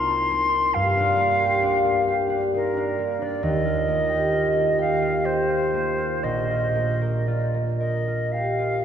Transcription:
Already playing: C2 A#3 D4 F4 C6
0.09 D#4
0.31 A#3
0.53 D#4
0.74 G2 F5
0.97 D4
1.17 A#3
1.39 G4
1.62 D4
1.84 A#3
2.08 G4
2.30 D4
2.54 D#4 A#4
2.77 D4
2.99 A#3
3.22 D4 D5
3.43 D#2 D#5
3.65 F4
3.88 A#3
4.09 G4
4.33 F4
4.56 A#3
4.78 G4 F5
5.02 F4
5.25 G4 C5
5.49 F4
5.74 A#3
5.98 F4
6.23 A#1 D#5
6.51 F4
6.75 A#3
7.01 A#4
7.27 F4 D5
7.54 A#3
7.79 A#4 D#5
8.08 F4
8.32 G4 F5
8.59 F4

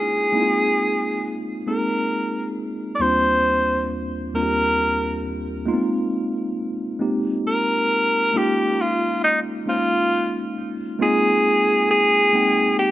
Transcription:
Already playing: G#3 A#3 C#4 D#4 E4 F4 G#4
0.32 G#3 A#3 C4 D#4 E4
0.41 F4
1.66 G#3 A#3 C4 D#4 G#4 A#4
2.95 D5
2.99 D#2 G3 A#3 C4 D4 F4 C5
4.33 D#2 G3 A#3 C4 D4 F4 A#4
4.42 G4
5.66 G#3 A#3 B3 D#4 F4
5.73 C4
6.99 G#3 A#3 C4 D#4 G4
7.47 A#4
8.34 G#3 A#3 C#4 D#4 F4 G4
8.82 F4
9.24 D#4
9.66 G#3 A#3 C#4 D#4 F4
10.99 G#3 A#3 C4 D#4 F4 G#4
11.91 G#4
12.33 G#3 A#3 C4 D#4 G5
12.79 G4

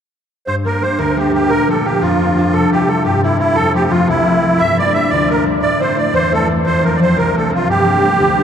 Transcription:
0.47 G2 C5
0.65 G3 A#3 D4 A#4
0.82 G3 A#3 D4 C5
0.98 D2 A#4
1.16 G3 A#3 D4 G4
1.33 G3 A#3 D4 G4
1.49 A#2 A#4
1.68 F3 A#3 D4 A4
1.85 F3 A#3 D4 G4
2.01 F2 F4
2.21 F3 A#3 D4
2.37 F3 A#3 D4
2.53 C3 A4
2.72 G3 C4 E4 G4
2.88 G3 C4 E4 A4
3.04 G2 G4
3.23 G3 C4 E4
3.39 G3 C4 E4
3.55 F2 A4
3.74 F3 A3 C4 G4
3.91 F3 A3 C4 F4
4.08 C2 E4
4.26 F3 A3 C4
4.42 F3 A3 C4
4.58 G2 E5
4.78 G3 A#3 D4 D5
4.94 G3 A#3 D4 E5
5.10 D2 D5
5.29 G3 A#3 D4 A#4
5.45 G3 A#3 D4
5.61 A2 D5
5.79 A3 C4 E4 C5
5.96 A3 C4 E4 D5
6.13 E2 C5
6.32 A3 C4 E4 A4
6.48 A3 C4 E4
6.65 F2 C5
6.83 F3 A3 C4 A#4
6.96 F3 A3 C4 D5
7.02 C5
7.16 C2 A#4
7.34 F3 A3 C4 A4
7.50 F3 A3 C4
7.54 F4
7.67 G2 G4
7.84 G3 A#3 D4
8.01 G3 A#3 D4
8.19 D2
8.37 G3 A#3 D4

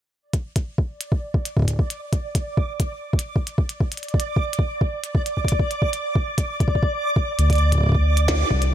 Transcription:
0.22 D5
0.33 kick, closed hi-hat
0.56 kick, closed hi-hat
0.78 kick
1.01 closed hi-hat
1.12 kick
1.34 kick
1.45 closed hi-hat
1.57 kick
1.59 kick
1.62 kick
1.65 kick
1.68 kick, closed hi-hat
1.71 kick
1.73 kick
1.76 kick
1.79 kick
1.90 closed hi-hat
2.13 kick, closed hi-hat
2.35 kick, closed hi-hat
2.57 kick
2.80 kick, closed hi-hat
3.13 kick
3.19 closed hi-hat
3.36 kick
3.47 closed hi-hat
3.58 kick
3.69 closed hi-hat
3.80 kick
3.92 closed hi-hat
3.97 closed hi-hat
4.03 closed hi-hat
4.08 closed hi-hat
4.14 kick
4.20 closed hi-hat
4.36 kick
4.53 closed hi-hat
4.59 kick
4.81 kick
5.04 closed hi-hat
5.15 kick
5.26 closed hi-hat
5.37 kick
5.45 kick, closed hi-hat
5.52 kick
5.59 kick
5.71 closed hi-hat
5.82 kick
5.93 closed hi-hat
6.15 kick
6.38 kick, closed hi-hat
6.60 kick, closed hi-hat
6.68 kick
6.75 kick
6.83 kick
7.16 kick
7.39 D2, closed hi-hat
7.50 kick, closed hi-hat
7.53 closed hi-hat
7.55 closed hi-hat
7.58 closed hi-hat
7.72 kick, closed hi-hat
7.75 kick
7.78 kick
7.81 kick
7.83 kick
7.86 kick
7.89 kick
7.92 kick
7.95 kick
8.17 closed hi-hat
8.28 kick, snare
8.51 C2, kick
8.62 closed hi-hat

